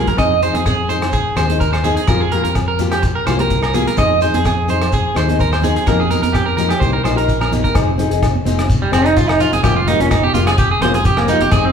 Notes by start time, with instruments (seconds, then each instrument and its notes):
Already playing: steel-string acoustic guitar F4 G4
0.07 clean electric guitar A#4, kick, closed hi-hat, low conga, shekere
0.17 fingered electric bass F2, steel-string acoustic guitar C4 D#4 G#4, clean electric guitar D#5, kick, cross-stick, closed hi-hat, low conga, low agogo, shekere
0.31 shekere
0.42 steel-string acoustic guitar C4 D#4 G#4, clean electric guitar C5, closed hi-hat, shekere
0.54 fingered electric bass F2, clean electric guitar G#4, closed hi-hat, high conga
0.66 clean electric guitar G#4, kick, cross-stick, closed hi-hat, low agogo, shekere
0.88 steel-string acoustic guitar C4 D#4 G#4, clean electric guitar C5, closed hi-hat, low conga, shekere
1.02 cross-stick, closed hi-hat, low agogo, shekere
1.12 clean electric guitar G#4, kick, closed hi-hat, shekere
1.36 fingered electric bass D#2, steel-string acoustic guitar C4 D#4 G#4, clean electric guitar C5, cross-stick, closed hi-hat, low agogo, shekere
1.49 steel-string acoustic guitar D#4 G#4, closed hi-hat, high conga, shekere
1.60 clean electric guitar A#4, kick, closed hi-hat, shekere
1.73 clean electric guitar C5, cross-stick, low agogo, shekere
1.83 steel-string acoustic guitar C4 D#4 G#4, clean electric guitar G#4, closed hi-hat, high conga, low conga, shekere
1.97 clean electric guitar G#4, closed hi-hat, shekere
2.08 fingered electric bass F2, steel-string acoustic guitar G3 F4 G4, clean electric guitar A#4, muted steel-string acoustic guitar stroke, kick, cross-stick, closed hi-hat, low conga, low agogo, shekere
2.20 clean electric guitar G#4, shekere
2.32 steel-string acoustic guitar G3 A#3 F4 G4, clean electric guitar A#4, closed hi-hat
2.44 fingered electric bass F2, clean electric guitar A#4, closed hi-hat
2.55 muted clean electric guitar stroke, kick, cross-stick, closed hi-hat, low agogo, shekere
2.68 clean electric guitar A#4
2.78 steel-string acoustic guitar G3 A#3 F4 G4, closed hi-hat, low conga, shekere
2.91 clean electric guitar G4, cross-stick, closed hi-hat, low agogo
3.02 muted clean electric guitar stroke, kick, closed hi-hat, shekere
3.15 clean electric guitar A#4
3.27 fingered electric bass C2, steel-string acoustic guitar G3 A#3 F4 G4, clean electric guitar C5, cross-stick, closed hi-hat, low agogo, shekere
3.39 steel-string acoustic guitar A#3 G4, clean electric guitar A#4, closed hi-hat, high conga, shekere
3.50 kick, closed hi-hat, shekere
3.63 clean electric guitar A#4, cross-stick, low agogo, shekere
3.74 steel-string acoustic guitar G3 A#3 F4 G4, clean electric guitar G#4, closed hi-hat, high conga, shekere
3.86 clean electric guitar A#4, closed hi-hat, shekere
3.97 fingered electric bass F2, steel-string acoustic guitar C4 D#4 G#4, clean electric guitar D#5, kick, cross-stick, closed hi-hat, low conga, low agogo, shekere
4.10 shekere
4.21 steel-string acoustic guitar C4 D#4 G#4, clean electric guitar C5, closed hi-hat, shekere
4.34 fingered electric bass F2, clean electric guitar G#4, closed hi-hat, high conga
4.45 clean electric guitar G#4, kick, cross-stick, closed hi-hat, low agogo, shekere
4.68 steel-string acoustic guitar C4 D#4 G#4, clean electric guitar C5, closed hi-hat, low conga, shekere
4.82 cross-stick, closed hi-hat, low agogo, shekere
4.92 clean electric guitar G#4, kick, closed hi-hat, shekere
5.14 fingered electric bass D#2, steel-string acoustic guitar C4 D#4 G#4, clean electric guitar C5, cross-stick, closed hi-hat, low agogo, shekere
5.28 steel-string acoustic guitar D#4 G#4, closed hi-hat, high conga, shekere
5.39 clean electric guitar A#4, kick, closed hi-hat, shekere
5.52 clean electric guitar C5, cross-stick, low agogo, shekere
5.61 steel-string acoustic guitar C4 D#4 G#4, clean electric guitar G#4, closed hi-hat, high conga, low conga, shekere
5.76 clean electric guitar G#4, closed hi-hat, shekere
5.86 fingered electric bass F2, steel-string acoustic guitar F3 A#3 D#4 G4, clean electric guitar A#4, kick, cross-stick, closed hi-hat, low agogo, shekere
6.00 clean electric guitar G#4, shekere
6.11 steel-string acoustic guitar A#3 D#4 G4, clean electric guitar A#4, closed hi-hat, high conga, shekere
6.22 fingered electric bass F2, clean electric guitar A#4, closed hi-hat, high conga, shekere
6.33 clean electric guitar G4, kick, cross-stick, closed hi-hat, low agogo, shekere
6.46 clean electric guitar A#4, shekere
6.57 steel-string acoustic guitar F3 A#3 D#4 G4, clean electric guitar A#4, closed hi-hat, low conga, shekere
6.69 clean electric guitar G4, cross-stick, closed hi-hat, low agogo, shekere
6.80 fingered electric bass C2, steel-string acoustic guitar A#3 D#4 G4, clean electric guitar C5, kick, closed hi-hat, shekere
6.93 clean electric guitar A#4
7.04 fingered electric bass A#1, steel-string acoustic guitar A#3 D#4 G4, clean electric guitar C5, cross-stick, closed hi-hat, low agogo, shekere
7.16 steel-string acoustic guitar D#4 G4, clean electric guitar A#4, closed hi-hat
7.29 kick, closed hi-hat, shekere
7.41 clean electric guitar A#4, cross-stick, high conga, low agogo, shekere
7.51 steel-string acoustic guitar A#3 D#4 G4, closed hi-hat, high conga, low conga, shekere
7.64 clean electric guitar A#4, kick, closed hi-hat, shekere
7.74 fingered electric bass F1, steel-string acoustic guitar C4 D#4 G#4, kick, cross-stick, closed hi-hat, low agogo, shekere
7.98 steel-string acoustic guitar C4 D#4 G#4, closed hi-hat, low conga, shekere
8.10 fingered electric bass F1, steel-string acoustic guitar D#4 G#4, closed hi-hat
8.23 kick, cross-stick, closed hi-hat, low agogo, shekere
8.35 high conga
8.45 fingered electric bass F1, steel-string acoustic guitar C4 D#4 G#4, closed hi-hat, high conga, shekere
8.59 cross-stick, closed hi-hat, low agogo
8.70 kick, closed hi-hat, shekere
8.82 clean electric guitar G3
8.92 fingered electric bass F1, steel-string acoustic guitar C4 D#4 G#4, clean electric guitar C4, cross-stick, closed hi-hat, low agogo, shekere
9.05 clean electric guitar D#4, closed hi-hat
9.16 clean electric guitar F4, kick, closed hi-hat, low conga, shekere
9.29 clean electric guitar D#4, cross-stick, low agogo
9.39 steel-string acoustic guitar C4 D#4 G#4, clean electric guitar F4, closed hi-hat, shekere
9.53 fingered electric bass F1, clean electric guitar G#4, closed hi-hat, high conga
9.62 fingered electric bass F1, steel-string acoustic guitar G3 A#3 F4 G4, clean electric guitar G4, kick, cross-stick, closed hi-hat, low agogo, shekere
9.76 clean electric guitar F4
9.86 steel-string acoustic guitar G3 A#3 F4 G4, clean electric guitar D#4, closed hi-hat, low conga, shekere
9.99 fingered electric bass F1, steel-string acoustic guitar A#3 F4, clean electric guitar C#4, muted steel-string acoustic guitar stroke, closed hi-hat
10.11 clean electric guitar D#4, kick, cross-stick, closed hi-hat, low agogo, shekere
10.23 clean electric guitar G4, high conga
10.33 fingered electric bass F1, steel-string acoustic guitar G3 A#3 F4 G4, clean electric guitar F4, closed hi-hat, high conga, low conga, shekere
10.47 clean electric guitar G#4, cross-stick, closed hi-hat, low agogo
10.58 clean electric guitar G4, kick, closed hi-hat, shekere
10.71 clean electric guitar G#4
10.81 fingered electric bass F1, steel-string acoustic guitar G3 A#3 F4 G4, clean electric guitar C5, cross-stick, closed hi-hat, high conga, low agogo
10.94 clean electric guitar G#4, closed hi-hat
11.04 clean electric guitar G4, kick, closed hi-hat, low conga, shekere
11.17 clean electric guitar A#3, cross-stick, low agogo
11.28 steel-string acoustic guitar G3 A#3 F4 G4, clean electric guitar D#4, closed hi-hat, low conga, shekere
11.40 fingered electric bass F1, clean electric guitar G4, closed hi-hat, high conga
11.52 fingered electric bass F1, steel-string acoustic guitar C4 D#4 G#4, clean electric guitar G#4, kick, cross-stick, closed hi-hat, low agogo, shekere
11.65 clean electric guitar C4